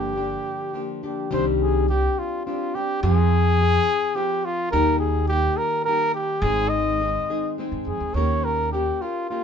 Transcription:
Already playing: G1 G2 D3 F3 A#3 D4 G4
0.16 F3 A#3 D4 G4
0.74 F3 A#3 D4 G4
1.03 F3 A#3 D4 G4
1.31 C2 C3 D#3 G3 C4 D4 G4 C5
1.62 G#4
1.89 G3 C4 D4 G4
2.19 F4
2.46 G3 C4 D4 F4 G4
2.75 G3 C4 D4 G4
3.03 F2 F3 C4 F4 G#4
3.59 F3 C4 F4
4.15 F3 C4 F4 G4 G#4
4.45 F4
4.71 D#2 D#3 G3 A#3 D#4 G4 A#4
4.99 G#4
5.28 G3 A#3 D#4 G4
5.57 A#4
5.84 G3 A#3 D#4 G4 A#4
6.14 G4
6.41 G#1 G#2 D#3 G#3 C4 D#4 G#4
6.69 D#5
7.00 G#3 C4 D#4 G#4
7.30 G#3 C4 D#4 G#4
7.58 G#3 C4 D#4 G#4
7.72 G2
7.87 F2 G#4
8.00 D#2
8.14 D#2 D#3 A#3 C#4 G4 A#4 C#5
8.44 A#4
8.72 A#3 C#4 G4 A#4
9.02 C#4 F4 G4 A#4
9.30 A#3 C#4 F4 G4 A#4

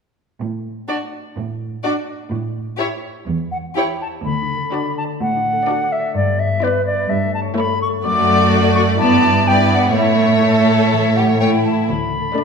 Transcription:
0.40 A2
0.88 D4 F#4 D5
1.37 A2
1.84 D4 F#4 D5
2.32 A2
2.78 E4 G4 C#5
3.27 E2
3.51 F#5
3.75 E4 G4 C#5 G5
4.01 A5
4.24 D2 D3 B5
4.41 D4
4.57 A4
4.72 D4 F#4 D5
4.88 D6
4.97 A5
5.04 D5
5.20 A2 A3 F#5
5.36 D4
5.53 A4
5.67 D4 F#4 D5
5.84 D6
5.92 E5
5.99 D5
6.15 G2 D5
6.31 B3
6.39 E5
6.47 D5
6.62 B3 E4 B4 D5
6.78 E5
6.85 D5
6.94 B4
7.09 G2 E5
7.25 A3
7.34 A5
7.41 C#5
7.57 A3 E4 A4 C#5 B5
7.73 E5
7.81 C#6
7.88 A4
8.04 F#2 A3 F#4 D5 D6
8.20 A3
8.53 A4
8.68 F#5
8.75 C#6
8.83 A4
8.99 G2 B3 E4 D5 A5
9.15 B3
9.32 D5
9.47 B3 E4 B4 D5 G5
9.63 E5
9.72 F#5
9.79 B4
9.94 A2 A3 E4 C#5 E5
10.11 A3
10.27 C#5
10.44 A4
10.76 A4
10.93 E3
11.09 A3
11.16 G4 F#5
11.25 C#5
11.40 A3 E4 A4 C#5 G5
11.56 E5
11.64 A5
11.72 A4
11.88 D2 D3 B5
12.05 D4
12.21 A4
12.35 A3 D4 D5

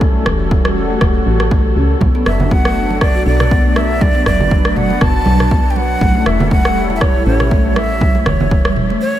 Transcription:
Already playing: A1 G3 C#4 A4
0.01 F#4, kick
0.15 A3
0.26 E1 E3, kick, cross-stick
0.51 kick
0.65 G3, cross-stick
0.90 A3
1.01 E1, kick, cross-stick
1.26 A1 E3
1.40 cross-stick
1.51 A3, kick
1.76 C#2 C#4
2.01 B1 F#3 B3 D4, kick, high conga
2.15 B3, muted conga
2.26 F#1 E5, cross-stick
2.40 low conga
2.51 B3 F#5, kick, muted conga, high conga
2.65 A3, cross-stick
2.90 muted conga
3.01 D5, kick, cross-stick
3.15 F#4
3.26 B1 D4 D5
3.40 cross-stick, mid tom, muted conga
3.51 B3, kick
3.65 A3
3.76 E5, cross-stick, muted conga
4.01 B4 D5, kick, high conga
4.15 B3, muted conga
4.26 F#1 F#3 D5, kick, cross-stick
4.40 low conga
4.51 kick, muted conga, high conga
4.65 A3, cross-stick
4.76 F#5, mid tom, high conga
4.90 B3, muted conga
5.01 F#1 B3 A5, kick, cross-stick, mid tom
5.26 B1 F#3, high conga
5.40 cross-stick, mid tom, muted conga
5.51 kick
5.70 G5
5.76 D4 F#5, muted conga
6.01 A1 G3 A3 C#4 E4 A4, kick, high conga
6.15 A3, muted conga
6.26 E1 E5, cross-stick
6.40 low conga
6.51 A3 F#5, kick, muted conga, high conga
6.65 G3, cross-stick
6.90 muted conga
6.96 E5
7.01 C#5, kick, cross-stick
7.15 E4
7.26 A1 C#4 C#5
7.40 cross-stick, mid tom, muted conga
7.51 A3, kick
7.65 G3
7.76 E5, cross-stick, muted conga
8.01 kick, high conga
8.15 A3, muted conga
8.26 E1 E3 C#5, kick, cross-stick, low conga
8.40 low conga
8.51 kick, muted conga, high conga
8.65 G3, cross-stick
8.76 mid tom, high conga
8.90 A3, muted conga
9.01 C#5

